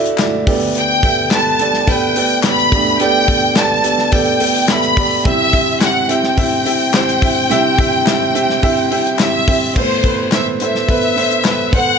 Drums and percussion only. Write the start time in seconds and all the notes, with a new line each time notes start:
0.05 hi-hat pedal
0.18 snare, clap, hi-hat pedal, open hi-hat
0.47 kick, hi-hat pedal, open hi-hat
0.75 hi-hat pedal, open hi-hat
1.03 kick, hi-hat pedal, open hi-hat
1.31 snare, clap, hi-hat pedal, open hi-hat
1.59 hi-hat pedal, open hi-hat
1.73 snare
1.87 kick, hi-hat pedal, open hi-hat
2.16 hi-hat pedal, open hi-hat
2.30 open hi-hat
2.43 snare, clap, hi-hat pedal, open hi-hat
2.58 hi-hat pedal
2.72 kick, hi-hat pedal, open hi-hat
3.00 hi-hat pedal, open hi-hat
3.28 kick, hi-hat pedal, open hi-hat
3.56 snare, clap, hi-hat pedal, open hi-hat
3.84 hi-hat pedal, open hi-hat
3.98 snare
4.12 kick, hi-hat pedal, open hi-hat
4.25 open hi-hat
4.40 hi-hat pedal, open hi-hat
4.54 hi-hat pedal, open hi-hat
4.68 snare, clap, hi-hat pedal, open hi-hat
4.82 hi-hat pedal
4.97 kick, hi-hat pedal, open hi-hat
5.25 kick, hi-hat pedal, open hi-hat
5.53 kick, hi-hat pedal, open hi-hat
5.81 snare, clap, hi-hat pedal, open hi-hat
6.09 hi-hat pedal, open hi-hat
6.23 snare
6.37 kick, hi-hat pedal, open hi-hat
6.66 hi-hat pedal, open hi-hat
6.80 open hi-hat
6.94 snare, clap, hi-hat pedal, open hi-hat
7.08 hi-hat pedal
7.22 kick, hi-hat pedal, open hi-hat
7.51 hi-hat pedal, open hi-hat
7.79 kick, hi-hat pedal, open hi-hat
8.07 snare, clap, hi-hat pedal, open hi-hat
8.35 hi-hat pedal, open hi-hat
8.49 snare
8.63 kick, hi-hat pedal, open hi-hat
8.77 open hi-hat
8.91 hi-hat pedal, open hi-hat
9.05 hi-hat pedal
9.19 snare, clap, hi-hat pedal, open hi-hat
9.48 kick, hi-hat pedal, open hi-hat
9.76 kick, crash
10.04 kick, hi-hat pedal, open hi-hat
10.32 snare, clap, hi-hat pedal, open hi-hat
10.60 hi-hat pedal, open hi-hat
10.75 snare
10.89 kick, hi-hat pedal, open hi-hat
11.03 open hi-hat
11.17 hi-hat pedal, open hi-hat
11.31 hi-hat pedal
11.45 snare, clap, hi-hat pedal, open hi-hat
11.73 kick, hi-hat pedal, open hi-hat